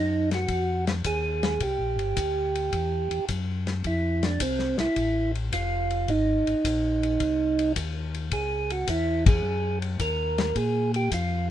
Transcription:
0.00 0.47 F#2 medium
0.00 0.30 D#4 medium
0.31 0.85 F#4 medium
0.31 snare soft
0.31 ride soft
0.48 1.03 F2 medium
0.48 kick soft
0.48 ride medium
0.87 snare soft
0.87 ride soft
1.04 1.59 D#2 medium
1.04 1.63 G#4 medium
1.04 kick soft
1.04 hi-hat pedal soft
1.04 ride medium
1.43 snare soft
1.43 ride soft
1.60 1.79 C2 medium
1.60 3.25 G4 medium
1.60 kick soft
1.60 ride medium
1.78 1.97 A#1 soft
1.96 2.14 G1 medium
1.96 ride soft
2.16 2.71 D2 medium
2.16 kick soft
2.16 hi-hat pedal medium
2.16 ride medium
2.55 ride soft
2.72 3.08 E2 medium
2.72 kick soft
2.72 ride soft
3.11 3.20 E2 soft
3.11 ride soft
3.28 3.83 F#2 medium
3.28 kick soft
3.28 hi-hat pedal soft
3.28 ride medium
3.67 snare soft
3.67 ride soft
3.84 4.39 F2 medium
3.84 4.25 E4 medium
3.84 kick soft
3.84 ride soft
4.23 4.42 D4 medium
4.23 snare soft
4.23 ride soft
4.40 4.76 C2 medium
4.40 4.77 C4 medium
4.40 kick soft
4.40 hi-hat pedal medium
4.40 ride medium
4.59 snare soft
4.78 4.88 C2 soft
4.78 5.32 E4 loud
4.78 snare soft
4.78 ride soft
4.96 5.51 A1 medium
4.96 kick soft
4.96 ride medium
5.35 ride soft
5.52 6.06 F1 medium
5.52 6.10 F4 medium
5.52 kick soft
5.52 hi-hat pedal soft
5.52 ride medium
5.90 ride soft
6.08 6.44 G#1 medium
6.08 7.73 D#4 medium
6.08 kick soft
6.08 ride soft
6.47 6.55 G#1 soft
6.47 ride soft
6.64 7.18 A#1 medium
6.64 kick soft
6.64 hi-hat pedal medium
6.64 ride medium
7.03 ride soft
7.20 7.74 C2 medium
7.20 kick soft
7.20 ride medium
7.59 ride soft
7.76 8.30 D#2 medium
7.76 kick soft
7.76 hi-hat pedal soft
7.76 ride medium
8.15 ride soft
8.31 8.86 C#2 medium
8.31 8.72 G#4 medium
8.31 kick soft
8.31 ride medium
8.70 8.89 F#4 medium
8.70 ride soft
8.87 9.41 E2 medium
8.87 9.24 E4 medium
8.87 kick soft
8.87 hi-hat pedal medium
8.87 ride medium
9.26 9.79 G#4 medium
9.26 kick medium
9.26 ride medium
9.43 9.97 F#2 medium
9.82 ride soft
9.99 10.53 D#2 medium
9.99 10.57 A#4 medium
9.99 kick soft
9.99 hi-hat pedal medium
9.99 ride medium
10.38 snare soft
10.38 ride soft
10.55 11.09 A#2 medium
10.55 10.92 G#4 medium
10.55 kick soft
10.55 ride medium
10.94 11.11 G4 medium
10.94 ride soft
11.11 11.51 F2 medium
11.11 11.48 F4 medium
11.11 kick soft
11.11 hi-hat pedal medium
11.11 ride medium

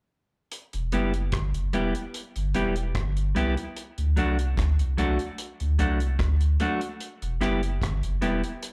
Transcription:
0.52 closed hi-hat medium
0.73 0.92 E1 medium
0.73 closed hi-hat soft
0.92 1.31 F#1 medium
0.92 1.12 G3 medium
0.92 1.12 B3 medium
0.92 1.12 E4 medium
0.92 1.12 G4 medium
0.92 closed hi-hat medium
1.14 closed hi-hat soft
1.32 1.53 G1 loud
1.32 kick loud
1.32 cross-stick loud
1.32 closed hi-hat loud
1.54 1.72 F#1 medium
1.54 closed hi-hat medium
1.73 1.94 E1 loud
1.73 1.93 G3 medium
1.73 1.93 B3 medium
1.73 1.93 E4 medium
1.73 1.93 G4 medium
1.73 closed hi-hat medium
1.95 closed hi-hat soft
2.14 closed hi-hat medium
2.36 2.54 G1 medium
2.36 closed hi-hat soft
2.54 2.93 E1 medium
2.54 2.74 G3 medium
2.54 2.74 B3 medium
2.54 2.74 E4 medium
2.54 2.74 G4 medium
2.54 closed hi-hat medium
2.76 closed hi-hat soft
2.95 3.34 G1 loud
2.95 kick loud
2.95 cross-stick loud
2.95 closed hi-hat medium
3.17 closed hi-hat soft
3.35 3.56 C2 medium
3.35 3.54 G3 medium
3.35 3.55 B3 medium
3.35 3.55 E4 medium
3.35 3.56 G4 medium
3.35 closed hi-hat medium
3.57 muted clean electric guitar stroke soft
3.57 closed hi-hat soft
3.77 closed hi-hat medium
3.98 4.16 D2 medium
3.98 closed hi-hat soft
4.16 4.55 C2 medium
4.16 4.36 F#3 medium
4.16 4.36 A3 medium
4.16 4.37 D4 medium
4.16 4.37 F#4 medium
4.16 closed hi-hat medium
4.39 closed hi-hat soft
4.57 4.78 D2 medium
4.57 kick loud
4.57 cross-stick loud
4.57 closed hi-hat loud
4.79 4.97 C2 medium
4.79 closed hi-hat soft
4.97 5.18 C2 medium
4.97 5.17 F#3 medium
4.97 5.17 A3 medium
4.97 5.17 D4 medium
4.97 5.18 F#4 medium
4.97 closed hi-hat medium
5.19 closed hi-hat soft
5.38 closed hi-hat medium
5.60 5.78 D2 medium
5.60 closed hi-hat soft
5.79 6.18 C2 medium
5.79 5.98 F#3 medium
5.79 5.98 A3 medium
5.79 5.98 D4 medium
5.79 5.99 F#4 medium
5.79 closed hi-hat medium
6.00 closed hi-hat soft
6.19 6.58 D2 medium
6.19 kick loud
6.19 cross-stick loud
6.19 closed hi-hat medium
6.41 closed hi-hat soft
6.60 6.79 F#3 medium
6.60 6.79 A3 medium
6.60 6.80 D4 medium
6.60 6.80 F#4 medium
6.60 closed hi-hat medium
6.81 closed hi-hat medium
7.00 closed hi-hat medium
7.22 7.40 E1 loud
7.22 closed hi-hat soft
7.41 7.79 F#1 medium
7.41 7.60 G3 medium
7.41 7.60 B3 medium
7.41 7.60 E4 medium
7.41 7.61 G4 medium
7.41 cross-stick medium
7.41 closed hi-hat medium
7.63 closed hi-hat soft
7.82 8.02 G1 medium
7.82 kick loud
7.82 cross-stick loud
7.82 closed hi-hat loud
8.03 8.21 F#1 medium
8.03 closed hi-hat medium
8.21 8.42 E1 loud
8.21 8.41 G3 medium
8.21 8.41 B3 medium
8.21 8.41 E4 medium
8.21 8.42 G4 medium
8.21 closed hi-hat medium
8.44 closed hi-hat soft
8.63 closed hi-hat loud

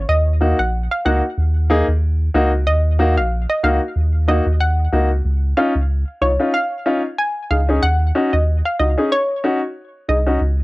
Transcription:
0.09 0.54 D#2 loud
0.09 0.22 D#5 loud
0.41 0.55 A#3 medium
0.41 0.55 D#4 medium
0.41 0.56 F#4 medium
0.59 0.88 A#1 medium
0.59 0.70 F#5 medium
0.91 1.02 F5 medium
1.05 1.22 C#2 medium
1.05 1.20 A#3 medium
1.05 1.20 D#4 medium
1.05 1.20 F#4 medium
1.05 1.19 F#5 medium
1.38 1.82 D#2 loud
1.70 1.84 A#3 medium
1.70 1.85 D#4 medium
1.70 1.85 G#4 loud
1.88 2.29 D#2 medium
2.34 2.68 C#2 medium
2.34 2.49 A#3 medium
2.34 2.49 D#4 medium
2.34 2.49 F#4 loud
2.67 3.19 D#2 loud
2.67 2.80 D#5 loud
2.99 3.14 A#3 medium
2.99 3.14 D#4 medium
2.99 3.14 F#4 medium
3.17 3.46 A#1 loud
3.17 3.28 F5 medium
3.50 3.60 D#5 medium
3.63 3.80 C#2 medium
3.63 3.78 A#3 medium
3.63 3.78 D#4 medium
3.63 3.78 F#4 medium
3.63 3.77 F5 medium
3.96 4.41 D#2 loud
4.28 4.42 A#3 medium
4.28 4.43 D#4 medium
4.28 4.43 F#4 medium
4.28 4.42 D#5 medium
4.46 4.88 D#2 medium
4.60 5.08 F#5 medium
4.92 5.21 C#2 loud
4.92 5.07 A#3 medium
4.92 5.07 D#4 medium
4.92 5.07 F#4 medium
5.25 5.54 C#2 loud
5.57 5.72 C#4 medium
5.57 5.72 D#4 medium
5.57 5.72 F4 medium
5.57 5.71 F5 medium
5.75 6.04 C#2 loud
6.21 6.38 C2 medium
6.21 6.29 D#4 soft
6.21 6.29 F4 medium
6.21 6.35 C#5 medium
6.39 6.51 C#4 medium
6.39 6.51 D#4 medium
6.39 6.51 F4 medium
6.54 7.01 F5 loud
6.86 7.00 C#4 medium
6.86 7.01 D#4 medium
6.86 7.01 F4 medium
7.18 7.32 G#5 medium
7.50 7.79 C#2 loud
7.50 7.58 D#4 soft
7.50 7.58 G#4 soft
7.50 7.64 F5 medium
7.69 7.80 C#4 medium
7.69 7.80 D#4 medium
7.69 7.80 G#4 medium
7.83 8.12 D#2 loud
7.83 7.96 F#5 loud
8.15 8.30 C#4 medium
8.15 8.30 D#4 medium
8.15 8.30 F#4 medium
8.33 8.62 D#2 medium
8.33 8.44 D#5 medium
8.66 8.76 F5 medium
8.80 8.96 C#2 loud
8.80 8.87 D#4 soft
8.80 8.87 F#4 medium
8.80 8.93 D#5 medium
8.98 9.09 C#4 medium
8.98 9.09 D#4 medium
8.98 9.09 G#4 medium
9.12 9.59 C#5 loud
9.44 9.59 C#4 medium
9.44 9.59 D#4 medium
9.44 9.59 F#4 medium
10.09 10.38 C2 loud
10.09 10.16 D#4 soft
10.09 10.16 G#4 soft
10.09 10.22 D#5 medium
10.27 10.38 C#4 medium
10.27 10.38 D#4 medium
10.27 10.38 F#4 medium
10.41 10.64 C#2 loud

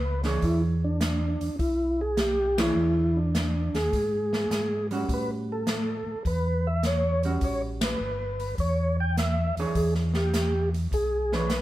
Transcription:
0.00 0.38 C#2 medium
0.00 0.22 B4 medium
0.23 0.97 E3 medium
0.23 0.97 D4 medium
0.23 0.98 G#4 medium
0.23 0.98 C#5 medium
0.23 snare soft
0.23 open hi-hat soft
0.42 1.37 E2 medium
0.42 0.62 E4 medium
0.42 kick soft
0.42 open hi-hat soft
0.84 1.56 D4 medium
1.01 snare medium
1.01 closed hi-hat medium
1.41 1.50 E2 soft
1.41 open hi-hat soft
1.59 2.72 B1 medium
1.59 2.01 E4 medium
1.59 kick soft
1.59 open hi-hat soft
2.01 2.19 G#4 medium
2.17 2.59 G4 loud
2.17 snare medium
2.17 closed hi-hat soft
2.58 3.31 E3 medium
2.58 3.31 D4 medium
2.58 3.18 E4 medium
2.58 3.31 G#4 medium
2.58 3.31 C#5 medium
2.58 snare medium
2.58 ride medium
2.75 3.70 E2 medium
3.17 3.76 D4 medium
3.35 snare medium
3.35 closed hi-hat medium
3.73 3.91 D#2 medium
3.73 4.87 G#4 medium
3.73 snare soft
3.73 open hi-hat soft
3.92 4.46 G#2 medium
3.92 kick soft
3.92 open hi-hat soft
4.33 snare soft
4.50 5.04 G#2 medium
4.50 snare medium
4.50 closed hi-hat soft
4.91 5.64 G3 medium
4.91 5.64 C#4 medium
4.91 5.64 F#4 medium
4.91 open hi-hat soft
5.08 6.03 A2 medium
5.08 kick soft
5.08 open hi-hat soft
5.14 5.31 B4 medium
5.52 6.23 A4 medium
5.67 snare medium
5.67 closed hi-hat medium
6.06 6.15 A2 soft
6.25 7.38 E2 medium
6.25 6.68 B4 medium
6.25 kick soft
6.25 open hi-hat soft
6.67 6.85 E5 medium
6.83 7.22 C#5 medium
6.83 snare medium
6.83 closed hi-hat soft
7.23 7.97 G3 medium
7.23 7.97 C#4 medium
7.23 7.97 F#4 medium
7.23 open hi-hat soft
7.41 7.96 A1 medium
7.41 7.62 C#5 medium
7.41 kick soft
7.41 open hi-hat soft
7.81 8.55 B4 medium
7.81 snare medium
7.81 ride medium
7.99 8.54 G1 medium
8.40 open hi-hat soft
8.58 9.53 E2 medium
8.58 8.97 C#5 medium
8.58 kick soft
8.58 open hi-hat soft
9.00 9.16 G5 medium
9.17 9.55 E5 medium
9.17 snare medium
9.17 closed hi-hat soft
9.56 9.66 E2 soft
9.56 10.31 E3 medium
9.56 10.31 D4 medium
9.56 10.31 G#4 medium
9.56 10.31 C#5 medium
9.56 open hi-hat soft
9.75 10.87 E2 medium
9.75 9.94 G#4 medium
9.75 kick soft
9.75 open hi-hat soft
9.94 snare soft
10.14 10.69 G4 medium
10.14 snare soft
10.34 snare medium
10.34 closed hi-hat medium
10.74 open hi-hat soft
10.91 11.62 B1 medium
10.91 11.34 G#4 medium
10.91 kick soft
10.91 open hi-hat soft
11.32 11.48 E3 medium
11.32 11.49 D4 medium
11.32 11.49 G#4 medium
11.32 11.62 B4 loud
11.32 11.49 C#5 medium
11.32 snare soft
11.50 snare medium
11.50 closed hi-hat soft

